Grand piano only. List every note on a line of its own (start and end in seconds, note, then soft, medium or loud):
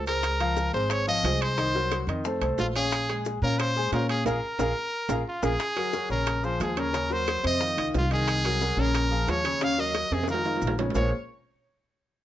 0.07 0.34 G#3 medium
0.07 0.35 G#4 medium
0.07 0.35 C5 medium
0.40 0.68 F3 medium
0.40 0.68 F4 medium
0.40 0.68 F5 medium
0.74 1.02 G#3 medium
0.74 1.02 G#4 medium
0.74 1.02 C5 medium
1.07 1.21 F3 medium
1.07 1.22 F4 medium
1.07 1.22 F5 medium
1.25 1.52 G#3 medium
1.25 1.52 G#4 medium
1.25 1.52 C5 medium
1.58 1.72 D#3 medium
1.58 1.72 D#4 medium
1.58 1.72 D#5 medium
1.75 2.02 F#3 medium
1.75 2.03 F#4 medium
1.75 2.03 A#4 medium
2.09 2.22 D#3 medium
2.09 2.22 D#4 medium
2.09 2.23 D#5 medium
2.25 2.39 A3 medium
2.25 2.39 A4 medium
2.25 2.39 C5 medium
2.41 2.69 A3 medium
2.41 2.69 A4 medium
2.41 2.69 C5 medium
2.75 3.03 C#4 medium
2.75 3.03 C#5 medium
2.75 3.03 F5 medium
3.09 3.37 G#3 medium
3.09 3.37 G#4 medium
3.09 3.37 G#5 medium
3.43 3.70 C#4 medium
3.43 3.71 C#5 medium
3.43 3.71 F5 medium
3.77 3.90 G#3 medium
3.77 3.90 G#4 medium
3.77 3.90 G#5 medium
3.93 4.20 C#4 medium
3.93 4.21 C#5 medium
3.93 4.21 F5 medium
4.26 4.37 F4 loud
4.26 4.37 G#4 medium
4.26 4.37 A#4 medium
4.60 4.70 F4 medium
4.60 4.70 G#4 medium
4.60 4.70 A#4 medium
5.10 5.21 F4 medium
5.10 5.20 G#4 medium
5.10 5.21 A#4 medium
5.43 5.54 F4 medium
5.43 5.54 G#4 medium
5.43 5.54 A#4 medium
5.76 5.90 F#3 medium
5.76 5.90 F#4 medium
5.76 5.91 A#4 medium
5.94 6.07 F#3 medium
5.94 6.07 F#4 medium
5.94 6.08 A#4 medium
6.09 6.37 C#3 medium
6.09 6.37 C#4 medium
6.09 6.38 C#5 medium
6.43 6.71 F3 medium
6.43 6.71 F4 medium
6.43 6.71 G#4 medium
6.77 6.90 C#3 medium
6.77 6.91 C#4 medium
6.77 6.91 C#5 medium
6.93 7.07 C#3 medium
6.93 7.07 C#4 medium
6.93 7.07 C#5 medium
7.10 7.38 F#3 medium
7.10 7.38 F#4 medium
7.10 7.38 A#4 medium
7.43 7.57 C3 medium
7.43 7.57 C4 medium
7.43 7.58 C5 medium
7.60 7.74 D#3 medium
7.60 7.74 D#4 medium
7.60 7.74 F4 medium
7.77 8.05 D#3 medium
7.77 8.05 D#4 medium
7.77 8.05 F4 medium
8.11 8.38 D#3 medium
8.11 8.39 D#4 medium
8.11 8.39 D#5 medium
8.45 8.58 F#3 medium
8.45 8.59 F#4 medium
8.45 8.59 A#4 medium
8.61 8.75 F#3 medium
8.61 8.75 F#4 medium
8.61 8.75 A#4 medium
8.78 9.05 C#3 medium
8.78 9.05 C#4 medium
8.78 9.06 C#5 medium
9.11 9.38 F3 medium
9.11 9.39 F4 medium
9.11 9.39 G#4 medium
9.44 9.58 C#3 medium
9.44 9.58 C#4 medium
9.44 9.59 C#5 medium
9.61 9.75 C#3 medium
9.61 9.75 C#4 medium
9.61 9.75 C#5 medium
9.78 10.05 F#3 medium
9.78 10.06 F#4 medium
9.78 10.06 A#4 medium
10.12 10.25 C3 medium
10.12 10.25 C4 medium
10.12 10.26 C5 medium
10.28 10.42 D#3 medium
10.28 10.42 D#4 medium
10.28 10.42 F4 medium
10.45 10.72 D#3 medium
10.45 10.73 D#4 medium
10.45 10.73 F4 medium
10.79 10.92 C#3 medium
10.79 10.93 C#4 medium
10.79 10.93 C#5 medium
10.95 11.10 A#3 medium
10.95 11.11 F4 medium
10.95 11.11 G#4 medium
10.95 11.11 A#4 medium
10.95 11.11 C5 medium
10.95 11.11 C#5 medium